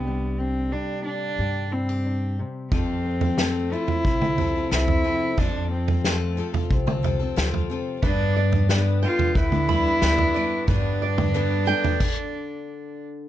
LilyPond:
<<
  \new Staff \with { instrumentName = "Nylon-string guitar" } { \time 4/4 \key f \lydian \tempo 4 = 90 r1 | r1 | r1 | b'8 d''8 b'8 g''8 b'8 b''8 b'8 d''8 |
b'8 d''8 b'8 g''8 r2 | }
  \new Staff \with { instrumentName = "Cello" } { \time 4/4 \key f \lydian b8 c'8 d'8 d'4 c'4 r8 | c'4. e'4. e'4 | d'8 c'4 r2 r8 | d'4 r8 f'8 e'2 |
d'2.~ d'8 r8 | }
  \new Staff \with { instrumentName = "Steel-string acoustic guitar" } { \time 4/4 \key f \lydian << { <d' g'>8 d'4 d'8 g'8 e'16 g'16 d'8 r8 | r8 c'8 a4 c'4 c'8 c'8 | r8 c'8 a4 c'4 f'8 c'8 | r8 d'8 b4 d'4 d'8 d'8 |
r8 d'8 b4 r2 | } \\ { <c d g>4 g2~ g8 c8 | f,4. f4 c4. | f,4. f4 c4. | g,4. d4 g,4. |
g,4. d2~ d8 | } >> }
  \new Staff \with { instrumentName = "Steel-string acoustic guitar" } { \time 4/4 \key f \lydian r1 | <f c' f' a'>8. <c' f' a'>16 <f c' f' a'>8 <f c' a'>8. <c' f' a'>16 <f c' f' a'>16 <c' f' a'>16 <f c' a'>8 <f c' a'>8 | <f c' f' a'>8. <c' f' a'>16 <f c' f' a'>8 <f c' f' a'>16 <c' f' a'>8 <c' f' a'>16 <f c' f' a'>16 <c' f' a'>16 <f c' f' a'>8 <f c' f' a'>8 | <g, d g b d' g'>8. <g b d' g'>16 <g, d g b d' g'>8 <g b d' g'>8. <g b d' g'>16 <g b d' g'>16 <g b d' g'>16 <g, d g b d' g'>8 <g b d' g'>8 |
<g, d g b d' g'>8. <g b d' g'>16 <g, d g b d' g'>8 <g b d' g'>16 <g b d' g'>16 r2 | }
  \new Staff \with { instrumentName = "Upright bass" } { \clef bass \time 4/4 \key f \lydian c,4. r8 g,2 | f,2 c,4 c,8 r8 | f,2 c,4 d,8 r8 | g,2 d,4 d,8 r8 |
g,2 r2 | }
  \new DrumStaff \with { instrumentName = "Drums" } \drummode { \time 4/4 r4 r4 r4 r4 | <bd tomfh>8. tomfh16 sn8. tomfh16 bd16 toml16 tomfh8 sn16 tomfh8. | <bd tomfh>8. tomfh16 sn8. tomfh16 bd16 toml16 tomfh8 sn16 tomfh8. | <bd tomfh>8. tomfh16 sn8. tomfh16 bd16 toml16 tomfh8 sn16 tomfh8. |
<bd tomfh>8. <tomfh toml>16 r8. tomfh16 <cymc bd>4 r4 | }
>>